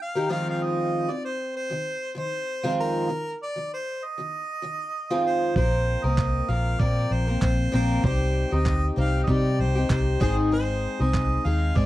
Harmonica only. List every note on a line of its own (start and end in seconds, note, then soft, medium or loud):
0.02 0.29 F5 medium
0.32 0.47 F5 medium
0.50 0.65 F5 medium
0.63 1.13 D#5 medium
1.11 1.24 D5 medium
1.25 1.53 C5 medium
1.56 2.13 C5 medium
2.18 2.74 C5 medium
2.80 3.37 A#4 medium
3.42 3.70 D5 medium
3.73 4.06 C5 medium
4.04 5.25 D#5 medium
5.26 5.54 C5 medium
5.57 6.06 C5 medium
6.05 6.52 D#5 medium
6.50 6.82 F5 medium
6.81 7.14 D5 medium
7.12 7.42 C5 medium
7.43 7.71 C5 medium
7.74 8.02 C5 medium
8.06 8.55 C5 medium
8.53 8.86 D#5 medium
9.00 9.21 F5 medium
9.23 9.32 D#5 medium
9.30 9.62 D5 loud
9.60 9.91 C5 medium
9.91 10.20 C5 medium
10.22 10.36 C5 medium
10.53 11.03 C5 medium
11.01 11.47 D#5 medium
11.46 11.78 F5 medium
11.77 11.86 D5 medium